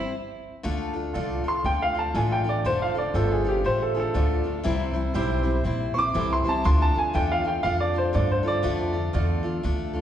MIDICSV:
0, 0, Header, 1, 6, 480
1, 0, Start_track
1, 0, Key_signature, -1, "minor"
1, 0, Tempo, 499584
1, 619, Time_signature, 4, 2, 24, 8
1, 9618, End_track
2, 0, Start_track
2, 0, Title_t, "Upright piano"
2, 0, Program_c, 0, 0
2, 1424, Note_on_c, 0, 84, 92
2, 1578, Note_off_c, 0, 84, 0
2, 1591, Note_on_c, 0, 79, 89
2, 1742, Note_off_c, 0, 79, 0
2, 1752, Note_on_c, 0, 77, 87
2, 1903, Note_off_c, 0, 77, 0
2, 1910, Note_on_c, 0, 81, 77
2, 2062, Note_off_c, 0, 81, 0
2, 2075, Note_on_c, 0, 80, 70
2, 2224, Note_off_c, 0, 80, 0
2, 2231, Note_on_c, 0, 79, 83
2, 2383, Note_off_c, 0, 79, 0
2, 2392, Note_on_c, 0, 74, 83
2, 2543, Note_off_c, 0, 74, 0
2, 2555, Note_on_c, 0, 72, 97
2, 2705, Note_off_c, 0, 72, 0
2, 2711, Note_on_c, 0, 77, 85
2, 2863, Note_off_c, 0, 77, 0
2, 2866, Note_on_c, 0, 74, 81
2, 3020, Note_off_c, 0, 74, 0
2, 3031, Note_on_c, 0, 69, 80
2, 3183, Note_off_c, 0, 69, 0
2, 3191, Note_on_c, 0, 68, 72
2, 3343, Note_off_c, 0, 68, 0
2, 3350, Note_on_c, 0, 67, 87
2, 3503, Note_off_c, 0, 67, 0
2, 3514, Note_on_c, 0, 72, 96
2, 3665, Note_off_c, 0, 72, 0
2, 3674, Note_on_c, 0, 69, 77
2, 3798, Note_on_c, 0, 68, 59
2, 3825, Note_off_c, 0, 69, 0
2, 3835, Note_off_c, 0, 68, 0
2, 3840, Note_on_c, 0, 69, 88
2, 5235, Note_off_c, 0, 69, 0
2, 5707, Note_on_c, 0, 85, 66
2, 5746, Note_off_c, 0, 85, 0
2, 5750, Note_on_c, 0, 86, 97
2, 6058, Note_off_c, 0, 86, 0
2, 6078, Note_on_c, 0, 84, 88
2, 6228, Note_off_c, 0, 84, 0
2, 6235, Note_on_c, 0, 81, 90
2, 6386, Note_off_c, 0, 81, 0
2, 6393, Note_on_c, 0, 84, 98
2, 6545, Note_off_c, 0, 84, 0
2, 6554, Note_on_c, 0, 81, 89
2, 6705, Note_off_c, 0, 81, 0
2, 6710, Note_on_c, 0, 80, 84
2, 6863, Note_off_c, 0, 80, 0
2, 6869, Note_on_c, 0, 79, 81
2, 7022, Note_off_c, 0, 79, 0
2, 7029, Note_on_c, 0, 77, 90
2, 7181, Note_on_c, 0, 79, 77
2, 7182, Note_off_c, 0, 77, 0
2, 7332, Note_on_c, 0, 77, 97
2, 7338, Note_off_c, 0, 79, 0
2, 7493, Note_off_c, 0, 77, 0
2, 7498, Note_on_c, 0, 74, 91
2, 7656, Note_off_c, 0, 74, 0
2, 7666, Note_on_c, 0, 72, 83
2, 7820, Note_off_c, 0, 72, 0
2, 7830, Note_on_c, 0, 74, 76
2, 7982, Note_off_c, 0, 74, 0
2, 7989, Note_on_c, 0, 72, 86
2, 8142, Note_off_c, 0, 72, 0
2, 8144, Note_on_c, 0, 74, 99
2, 9073, Note_off_c, 0, 74, 0
2, 9618, End_track
3, 0, Start_track
3, 0, Title_t, "Grand piano"
3, 0, Program_c, 1, 0
3, 1089, Note_on_c, 1, 65, 90
3, 1096, Note_on_c, 1, 69, 80
3, 1105, Note_on_c, 1, 74, 87
3, 1519, Note_off_c, 1, 65, 0
3, 1523, Note_off_c, 1, 69, 0
3, 1527, Note_off_c, 1, 74, 0
3, 2051, Note_on_c, 1, 65, 77
3, 2059, Note_on_c, 1, 69, 69
3, 2068, Note_on_c, 1, 74, 81
3, 2481, Note_off_c, 1, 65, 0
3, 2485, Note_off_c, 1, 69, 0
3, 2490, Note_off_c, 1, 74, 0
3, 3017, Note_on_c, 1, 65, 73
3, 3024, Note_on_c, 1, 69, 70
3, 3034, Note_on_c, 1, 72, 77
3, 3445, Note_off_c, 1, 65, 0
3, 3448, Note_off_c, 1, 69, 0
3, 3453, Note_off_c, 1, 72, 0
3, 3974, Note_on_c, 1, 65, 71
3, 3982, Note_on_c, 1, 69, 69
3, 3991, Note_on_c, 1, 74, 84
3, 4404, Note_off_c, 1, 65, 0
3, 4408, Note_off_c, 1, 69, 0
3, 4412, Note_off_c, 1, 74, 0
3, 4933, Note_on_c, 1, 64, 84
3, 4942, Note_on_c, 1, 67, 86
3, 4950, Note_on_c, 1, 72, 96
3, 5363, Note_off_c, 1, 64, 0
3, 5368, Note_off_c, 1, 67, 0
3, 5372, Note_off_c, 1, 72, 0
3, 5896, Note_on_c, 1, 64, 72
3, 5906, Note_on_c, 1, 67, 71
3, 5915, Note_on_c, 1, 69, 79
3, 6325, Note_off_c, 1, 64, 0
3, 6330, Note_off_c, 1, 67, 0
3, 6334, Note_off_c, 1, 69, 0
3, 6860, Note_on_c, 1, 65, 75
3, 6867, Note_on_c, 1, 69, 64
3, 6876, Note_on_c, 1, 74, 85
3, 7286, Note_off_c, 1, 65, 0
3, 7289, Note_off_c, 1, 69, 0
3, 7294, Note_off_c, 1, 74, 0
3, 7811, Note_on_c, 1, 65, 67
3, 7819, Note_on_c, 1, 69, 66
3, 7832, Note_on_c, 1, 74, 82
3, 8241, Note_off_c, 1, 65, 0
3, 8245, Note_off_c, 1, 69, 0
3, 8251, Note_off_c, 1, 74, 0
3, 8775, Note_on_c, 1, 65, 87
3, 8782, Note_on_c, 1, 69, 77
3, 8791, Note_on_c, 1, 74, 97
3, 9202, Note_off_c, 1, 65, 0
3, 9205, Note_off_c, 1, 69, 0
3, 9209, Note_off_c, 1, 74, 0
3, 9618, End_track
4, 0, Start_track
4, 0, Title_t, "Steel-string acoustic guitar"
4, 0, Program_c, 2, 25
4, 0, Note_on_c, 2, 55, 43
4, 0, Note_on_c, 2, 60, 40
4, 0, Note_on_c, 2, 64, 51
4, 0, Note_on_c, 2, 72, 50
4, 133, Note_off_c, 2, 72, 0
4, 136, Note_off_c, 2, 64, 0
4, 139, Note_off_c, 2, 60, 0
4, 144, Note_off_c, 2, 55, 0
4, 609, Note_on_c, 2, 50, 95
4, 613, Note_on_c, 2, 57, 88
4, 615, Note_on_c, 2, 62, 93
4, 621, Note_on_c, 2, 65, 100
4, 621, Note_on_c, 2, 69, 107
4, 888, Note_off_c, 2, 69, 0
4, 900, Note_on_c, 2, 69, 51
4, 901, Note_off_c, 2, 65, 0
4, 904, Note_off_c, 2, 50, 0
4, 906, Note_off_c, 2, 57, 0
4, 907, Note_off_c, 2, 62, 0
4, 913, Note_on_c, 2, 65, 53
4, 921, Note_on_c, 2, 62, 40
4, 1095, Note_off_c, 2, 62, 0
4, 1095, Note_off_c, 2, 65, 0
4, 1096, Note_off_c, 2, 69, 0
4, 1097, Note_on_c, 2, 50, 70
4, 1103, Note_on_c, 2, 57, 73
4, 1106, Note_on_c, 2, 62, 79
4, 1106, Note_on_c, 2, 65, 77
4, 1110, Note_on_c, 2, 69, 86
4, 1371, Note_off_c, 2, 69, 0
4, 1381, Note_off_c, 2, 65, 0
4, 1383, Note_on_c, 2, 69, 53
4, 1388, Note_off_c, 2, 50, 0
4, 1389, Note_off_c, 2, 62, 0
4, 1391, Note_off_c, 2, 57, 0
4, 1392, Note_on_c, 2, 65, 48
4, 1401, Note_on_c, 2, 62, 42
4, 1576, Note_off_c, 2, 62, 0
4, 1578, Note_off_c, 2, 69, 0
4, 1579, Note_on_c, 2, 57, 64
4, 1583, Note_off_c, 2, 65, 0
4, 1587, Note_on_c, 2, 62, 69
4, 1594, Note_on_c, 2, 65, 73
4, 1601, Note_on_c, 2, 69, 67
4, 1858, Note_off_c, 2, 69, 0
4, 1870, Note_off_c, 2, 57, 0
4, 1870, Note_on_c, 2, 69, 53
4, 1871, Note_off_c, 2, 65, 0
4, 1874, Note_off_c, 2, 62, 0
4, 1882, Note_on_c, 2, 65, 43
4, 1893, Note_on_c, 2, 62, 42
4, 2057, Note_off_c, 2, 62, 0
4, 2062, Note_off_c, 2, 65, 0
4, 2062, Note_off_c, 2, 69, 0
4, 2063, Note_on_c, 2, 50, 75
4, 2064, Note_on_c, 2, 57, 74
4, 2069, Note_on_c, 2, 62, 85
4, 2074, Note_on_c, 2, 65, 84
4, 2077, Note_on_c, 2, 69, 78
4, 2335, Note_off_c, 2, 69, 0
4, 2346, Note_on_c, 2, 69, 59
4, 2348, Note_off_c, 2, 65, 0
4, 2352, Note_off_c, 2, 50, 0
4, 2353, Note_off_c, 2, 57, 0
4, 2355, Note_off_c, 2, 62, 0
4, 2360, Note_on_c, 2, 65, 52
4, 2368, Note_on_c, 2, 62, 50
4, 2540, Note_off_c, 2, 62, 0
4, 2540, Note_off_c, 2, 69, 0
4, 2543, Note_on_c, 2, 50, 78
4, 2544, Note_off_c, 2, 65, 0
4, 2547, Note_on_c, 2, 57, 86
4, 2551, Note_on_c, 2, 62, 90
4, 2556, Note_on_c, 2, 65, 84
4, 2558, Note_on_c, 2, 69, 89
4, 2820, Note_off_c, 2, 69, 0
4, 2830, Note_off_c, 2, 65, 0
4, 2832, Note_on_c, 2, 69, 50
4, 2833, Note_off_c, 2, 50, 0
4, 2835, Note_off_c, 2, 57, 0
4, 2837, Note_off_c, 2, 62, 0
4, 2842, Note_on_c, 2, 65, 41
4, 2853, Note_on_c, 2, 62, 38
4, 3016, Note_off_c, 2, 62, 0
4, 3021, Note_on_c, 2, 50, 70
4, 3022, Note_off_c, 2, 65, 0
4, 3024, Note_off_c, 2, 69, 0
4, 3025, Note_on_c, 2, 57, 74
4, 3028, Note_on_c, 2, 62, 75
4, 3034, Note_on_c, 2, 65, 81
4, 3037, Note_on_c, 2, 69, 88
4, 3297, Note_off_c, 2, 69, 0
4, 3309, Note_on_c, 2, 69, 63
4, 3311, Note_off_c, 2, 65, 0
4, 3312, Note_off_c, 2, 50, 0
4, 3314, Note_off_c, 2, 57, 0
4, 3315, Note_off_c, 2, 62, 0
4, 3323, Note_on_c, 2, 65, 47
4, 3331, Note_on_c, 2, 62, 44
4, 3499, Note_off_c, 2, 62, 0
4, 3501, Note_on_c, 2, 57, 62
4, 3502, Note_off_c, 2, 69, 0
4, 3504, Note_off_c, 2, 65, 0
4, 3510, Note_on_c, 2, 62, 63
4, 3515, Note_on_c, 2, 65, 64
4, 3525, Note_on_c, 2, 69, 65
4, 3780, Note_off_c, 2, 69, 0
4, 3792, Note_off_c, 2, 57, 0
4, 3792, Note_off_c, 2, 65, 0
4, 3792, Note_on_c, 2, 69, 52
4, 3797, Note_off_c, 2, 62, 0
4, 3804, Note_on_c, 2, 65, 46
4, 3812, Note_on_c, 2, 62, 47
4, 3977, Note_off_c, 2, 62, 0
4, 3979, Note_on_c, 2, 50, 72
4, 3980, Note_off_c, 2, 65, 0
4, 3984, Note_off_c, 2, 69, 0
4, 3984, Note_on_c, 2, 57, 81
4, 3988, Note_on_c, 2, 62, 81
4, 3991, Note_on_c, 2, 65, 73
4, 3996, Note_on_c, 2, 69, 83
4, 4253, Note_off_c, 2, 69, 0
4, 4265, Note_on_c, 2, 69, 54
4, 4268, Note_off_c, 2, 65, 0
4, 4271, Note_off_c, 2, 50, 0
4, 4274, Note_off_c, 2, 57, 0
4, 4276, Note_off_c, 2, 62, 0
4, 4280, Note_on_c, 2, 65, 49
4, 4290, Note_on_c, 2, 62, 44
4, 4453, Note_on_c, 2, 48, 99
4, 4457, Note_on_c, 2, 52, 97
4, 4458, Note_off_c, 2, 62, 0
4, 4460, Note_on_c, 2, 55, 86
4, 4461, Note_off_c, 2, 65, 0
4, 4461, Note_off_c, 2, 69, 0
4, 4462, Note_on_c, 2, 60, 105
4, 4464, Note_on_c, 2, 64, 97
4, 4471, Note_on_c, 2, 72, 99
4, 4729, Note_off_c, 2, 72, 0
4, 4738, Note_off_c, 2, 64, 0
4, 4740, Note_on_c, 2, 72, 55
4, 4743, Note_off_c, 2, 60, 0
4, 4749, Note_off_c, 2, 48, 0
4, 4749, Note_off_c, 2, 55, 0
4, 4750, Note_on_c, 2, 64, 54
4, 4751, Note_off_c, 2, 52, 0
4, 4755, Note_on_c, 2, 60, 48
4, 4761, Note_on_c, 2, 55, 47
4, 4933, Note_off_c, 2, 55, 0
4, 4936, Note_off_c, 2, 60, 0
4, 4939, Note_off_c, 2, 64, 0
4, 4939, Note_off_c, 2, 72, 0
4, 4939, Note_on_c, 2, 48, 81
4, 4944, Note_on_c, 2, 52, 81
4, 4945, Note_on_c, 2, 55, 82
4, 4947, Note_on_c, 2, 60, 82
4, 4951, Note_on_c, 2, 64, 93
4, 4952, Note_on_c, 2, 72, 103
4, 5208, Note_off_c, 2, 72, 0
4, 5217, Note_off_c, 2, 64, 0
4, 5219, Note_on_c, 2, 72, 66
4, 5223, Note_off_c, 2, 60, 0
4, 5228, Note_on_c, 2, 64, 57
4, 5230, Note_off_c, 2, 55, 0
4, 5232, Note_off_c, 2, 48, 0
4, 5234, Note_off_c, 2, 52, 0
4, 5234, Note_on_c, 2, 60, 51
4, 5241, Note_on_c, 2, 55, 51
4, 5408, Note_off_c, 2, 55, 0
4, 5415, Note_off_c, 2, 60, 0
4, 5418, Note_off_c, 2, 72, 0
4, 5420, Note_on_c, 2, 55, 70
4, 5423, Note_off_c, 2, 64, 0
4, 5427, Note_on_c, 2, 60, 77
4, 5433, Note_on_c, 2, 64, 78
4, 5439, Note_on_c, 2, 72, 86
4, 5696, Note_off_c, 2, 72, 0
4, 5706, Note_off_c, 2, 64, 0
4, 5708, Note_on_c, 2, 72, 59
4, 5710, Note_off_c, 2, 60, 0
4, 5712, Note_off_c, 2, 55, 0
4, 5718, Note_on_c, 2, 64, 47
4, 5721, Note_on_c, 2, 60, 47
4, 5729, Note_on_c, 2, 55, 42
4, 5895, Note_off_c, 2, 55, 0
4, 5898, Note_off_c, 2, 60, 0
4, 5900, Note_on_c, 2, 48, 72
4, 5902, Note_off_c, 2, 64, 0
4, 5902, Note_off_c, 2, 72, 0
4, 5904, Note_on_c, 2, 52, 81
4, 5906, Note_on_c, 2, 55, 85
4, 5910, Note_on_c, 2, 60, 84
4, 5913, Note_on_c, 2, 64, 87
4, 5914, Note_on_c, 2, 72, 86
4, 6178, Note_off_c, 2, 72, 0
4, 6188, Note_off_c, 2, 64, 0
4, 6189, Note_on_c, 2, 72, 58
4, 6192, Note_off_c, 2, 48, 0
4, 6193, Note_off_c, 2, 60, 0
4, 6194, Note_off_c, 2, 52, 0
4, 6195, Note_off_c, 2, 55, 0
4, 6199, Note_on_c, 2, 64, 52
4, 6204, Note_on_c, 2, 60, 47
4, 6210, Note_on_c, 2, 55, 52
4, 6381, Note_on_c, 2, 50, 77
4, 6382, Note_off_c, 2, 55, 0
4, 6383, Note_off_c, 2, 72, 0
4, 6386, Note_on_c, 2, 57, 77
4, 6387, Note_off_c, 2, 60, 0
4, 6387, Note_off_c, 2, 64, 0
4, 6390, Note_on_c, 2, 62, 86
4, 6391, Note_on_c, 2, 65, 88
4, 6396, Note_on_c, 2, 69, 88
4, 6656, Note_off_c, 2, 69, 0
4, 6668, Note_on_c, 2, 69, 50
4, 6669, Note_off_c, 2, 65, 0
4, 6672, Note_off_c, 2, 50, 0
4, 6675, Note_off_c, 2, 57, 0
4, 6677, Note_off_c, 2, 62, 0
4, 6681, Note_on_c, 2, 65, 43
4, 6690, Note_on_c, 2, 62, 44
4, 6852, Note_off_c, 2, 62, 0
4, 6855, Note_off_c, 2, 65, 0
4, 6855, Note_on_c, 2, 50, 68
4, 6859, Note_off_c, 2, 69, 0
4, 6859, Note_on_c, 2, 57, 65
4, 6864, Note_on_c, 2, 62, 75
4, 6866, Note_on_c, 2, 65, 71
4, 6871, Note_on_c, 2, 69, 79
4, 7132, Note_off_c, 2, 69, 0
4, 7143, Note_on_c, 2, 69, 52
4, 7144, Note_off_c, 2, 65, 0
4, 7149, Note_off_c, 2, 50, 0
4, 7151, Note_off_c, 2, 57, 0
4, 7153, Note_off_c, 2, 62, 0
4, 7155, Note_on_c, 2, 65, 53
4, 7163, Note_on_c, 2, 62, 41
4, 7332, Note_on_c, 2, 57, 61
4, 7333, Note_off_c, 2, 62, 0
4, 7338, Note_off_c, 2, 65, 0
4, 7340, Note_off_c, 2, 69, 0
4, 7344, Note_on_c, 2, 62, 67
4, 7350, Note_on_c, 2, 65, 68
4, 7357, Note_on_c, 2, 69, 65
4, 7615, Note_off_c, 2, 69, 0
4, 7623, Note_off_c, 2, 65, 0
4, 7627, Note_off_c, 2, 57, 0
4, 7627, Note_on_c, 2, 69, 54
4, 7633, Note_off_c, 2, 62, 0
4, 7635, Note_on_c, 2, 65, 52
4, 7648, Note_on_c, 2, 62, 47
4, 7807, Note_off_c, 2, 62, 0
4, 7810, Note_on_c, 2, 50, 75
4, 7812, Note_off_c, 2, 65, 0
4, 7815, Note_off_c, 2, 69, 0
4, 7817, Note_on_c, 2, 57, 69
4, 7819, Note_on_c, 2, 62, 72
4, 7823, Note_on_c, 2, 65, 75
4, 7826, Note_on_c, 2, 69, 72
4, 8088, Note_off_c, 2, 69, 0
4, 8099, Note_on_c, 2, 69, 55
4, 8102, Note_off_c, 2, 65, 0
4, 8106, Note_off_c, 2, 50, 0
4, 8107, Note_off_c, 2, 62, 0
4, 8109, Note_off_c, 2, 57, 0
4, 8113, Note_on_c, 2, 65, 53
4, 8118, Note_on_c, 2, 62, 41
4, 8287, Note_on_c, 2, 50, 83
4, 8288, Note_off_c, 2, 62, 0
4, 8290, Note_off_c, 2, 65, 0
4, 8291, Note_off_c, 2, 69, 0
4, 8295, Note_on_c, 2, 57, 97
4, 8300, Note_on_c, 2, 62, 86
4, 8301, Note_on_c, 2, 65, 97
4, 8302, Note_on_c, 2, 69, 86
4, 8566, Note_off_c, 2, 69, 0
4, 8578, Note_off_c, 2, 65, 0
4, 8578, Note_on_c, 2, 69, 46
4, 8584, Note_off_c, 2, 50, 0
4, 8587, Note_off_c, 2, 62, 0
4, 8588, Note_off_c, 2, 57, 0
4, 8590, Note_on_c, 2, 65, 44
4, 8598, Note_on_c, 2, 62, 42
4, 8771, Note_off_c, 2, 62, 0
4, 8774, Note_off_c, 2, 65, 0
4, 8774, Note_on_c, 2, 50, 83
4, 8776, Note_off_c, 2, 69, 0
4, 8780, Note_on_c, 2, 57, 87
4, 8783, Note_on_c, 2, 62, 75
4, 8785, Note_on_c, 2, 65, 81
4, 8789, Note_on_c, 2, 69, 87
4, 9047, Note_off_c, 2, 69, 0
4, 9059, Note_on_c, 2, 69, 60
4, 9060, Note_off_c, 2, 65, 0
4, 9067, Note_off_c, 2, 50, 0
4, 9070, Note_off_c, 2, 57, 0
4, 9071, Note_off_c, 2, 62, 0
4, 9071, Note_on_c, 2, 65, 55
4, 9082, Note_on_c, 2, 62, 52
4, 9252, Note_off_c, 2, 62, 0
4, 9255, Note_off_c, 2, 69, 0
4, 9256, Note_on_c, 2, 57, 76
4, 9260, Note_off_c, 2, 65, 0
4, 9264, Note_on_c, 2, 62, 81
4, 9271, Note_on_c, 2, 65, 73
4, 9276, Note_on_c, 2, 69, 87
4, 9532, Note_off_c, 2, 69, 0
4, 9544, Note_on_c, 2, 69, 64
4, 9545, Note_off_c, 2, 65, 0
4, 9547, Note_off_c, 2, 57, 0
4, 9551, Note_off_c, 2, 62, 0
4, 9557, Note_on_c, 2, 65, 55
4, 9567, Note_on_c, 2, 62, 47
4, 9618, Note_off_c, 2, 62, 0
4, 9618, Note_off_c, 2, 65, 0
4, 9618, Note_off_c, 2, 69, 0
4, 9618, End_track
5, 0, Start_track
5, 0, Title_t, "Upright bass"
5, 0, Program_c, 3, 32
5, 623, Note_on_c, 3, 38, 80
5, 1088, Note_off_c, 3, 38, 0
5, 1104, Note_on_c, 3, 36, 88
5, 1372, Note_off_c, 3, 36, 0
5, 1579, Note_on_c, 3, 38, 86
5, 2047, Note_off_c, 3, 38, 0
5, 2060, Note_on_c, 3, 33, 96
5, 2528, Note_off_c, 3, 33, 0
5, 2538, Note_on_c, 3, 29, 77
5, 3007, Note_off_c, 3, 29, 0
5, 3017, Note_on_c, 3, 31, 90
5, 3487, Note_off_c, 3, 31, 0
5, 3503, Note_on_c, 3, 33, 79
5, 3970, Note_off_c, 3, 33, 0
5, 3986, Note_on_c, 3, 38, 84
5, 4452, Note_off_c, 3, 38, 0
5, 4468, Note_on_c, 3, 36, 79
5, 4933, Note_off_c, 3, 36, 0
5, 4952, Note_on_c, 3, 35, 90
5, 5415, Note_off_c, 3, 35, 0
5, 5432, Note_on_c, 3, 34, 85
5, 5895, Note_off_c, 3, 34, 0
5, 5911, Note_on_c, 3, 36, 92
5, 6177, Note_off_c, 3, 36, 0
5, 6391, Note_on_c, 3, 38, 87
5, 6657, Note_off_c, 3, 38, 0
5, 6870, Note_on_c, 3, 40, 88
5, 7333, Note_off_c, 3, 40, 0
5, 7346, Note_on_c, 3, 41, 80
5, 7811, Note_off_c, 3, 41, 0
5, 7830, Note_on_c, 3, 43, 96
5, 8292, Note_off_c, 3, 43, 0
5, 8309, Note_on_c, 3, 41, 82
5, 8771, Note_off_c, 3, 41, 0
5, 8788, Note_on_c, 3, 40, 90
5, 9250, Note_off_c, 3, 40, 0
5, 9267, Note_on_c, 3, 38, 92
5, 9618, Note_off_c, 3, 38, 0
5, 9618, End_track
6, 0, Start_track
6, 0, Title_t, "Muted upright bass strokes"
6, 1391, Note_on_c, 9, 29, 36
6, 1487, Note_off_c, 9, 29, 0
6, 6204, Note_on_c, 9, 29, 38
6, 6300, Note_off_c, 9, 29, 0
6, 6686, Note_on_c, 9, 29, 41
6, 6782, Note_off_c, 9, 29, 0
6, 9618, End_track
0, 0, End_of_file